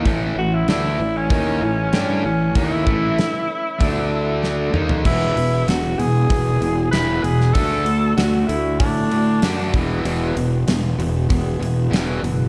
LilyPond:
<<
  \new Staff \with { instrumentName = "Tenor saxophone" } { \time 4/4 \key e \mixolydian \tempo 4 = 96 r8 fis'16 e'16 e'8. cis'4.~ cis'16 cis'8 | e'2. r4 | e'4 fis'8 gis'4. b'8 gis'8 | a'4 fis'8 e'8 d'4. r8 |
r1 | }
  \new Staff \with { instrumentName = "Steel-string acoustic guitar" } { \time 4/4 \key e \mixolydian <a, e a cis' e'>8 <a cis' e'>8 <a, e a cis' e'>8 <a cis' e'>8 <a cis' e'>4 <a, e a cis' e'>8 <a cis' e'>8 | <a, a cis' e'>8 <a cis' e'>8 <a, e a cis' e'>8 <a cis' e'>8 <d a d' a'>4 <d a d' a'>8 <a cis' a'>8 | <e, b, e gis b e'>4 <e gis b e'>4 <e, b, e gis b e'>8 <e gis b e'>4 <e gis b e'>8 | <d a d' fis'>8 <a d' fis'>8 <d a d' fis'>4 <d a d' fis'>8 <a d' fis'>4 <e gis b gis'>8 |
<e, b, e gis b gis'>8 <e gis b gis'>8 <e gis b gis'>4 <e, b, e gis b gis'>8 <e gis b gis'>4. | }
  \new Staff \with { instrumentName = "Distorted electric guitar" } { \clef bass \time 4/4 \key e \mixolydian <a, e a>8 <a, e>8 <d a d'>8 <a, e>8 <dis bes dis'>8 <a, e>8 <g d' g'>8 <a, e>8 | <dis bes dis'>8 <a, e a>8 r4 <d a d'>4. <dis bes dis'>8 | <e, b, e>8 <e, b,>8 <e, b,>8 <e, b,>8 <e, b,>8 <e, b,>8 <e, b, e>8 <e, b,>8 | <d a d'>8 <d a>8 <d a>8 <d a>8 <d a>8 <d a>8 <d a d'>8 <e, b, e>8 |
<e, b, e>8 <e, b,>8 <e, b,>8 <e, b,>8 <e, b,>8 <e, b,>8 <e, b, e>8 <e, b,>8 | }
  \new Staff \with { instrumentName = "Fingered electric bass" } { \clef bass \time 4/4 \key e \mixolydian a,,8 a,,8 d,8 a,,8 dis,8 a,,8 g,8 a,,8 | dis,8 a,,8 r4 d,4. dis,8 | e,,8 e,,8 e,,8 e,,8 e,,8 e,,8 e,,8 e,,8 | d,4 d,8 d,8 a,4 fis,8 e,,8 |
e,,8 e,,8 e,,8 e,,8 e,,8 e,,8 e,,8 fis,,8 | }
  \new DrumStaff \with { instrumentName = "Drums" } \drummode { \time 4/4 <hho bd>4 <hho sn>4 <hho bd>4 <hho sn>4 | <hho bd>8 bd8 <hho sn>4 <hho bd>4 sn8 toml16 tomfh16 | <cymc bd>8 hho8 <hho sn>8 hho8 <hho bd>8 hho8 <hho sn>8 hho16 sn16 | <hho bd>8 hho8 <hho sn>8 hho8 <hho bd>8 hho8 <hho sn>8 <hho bd>8 |
hho8 hho8 <hho sn>8 hho8 <hho bd>8 hho8 <hho sn>8 hho8 | }
>>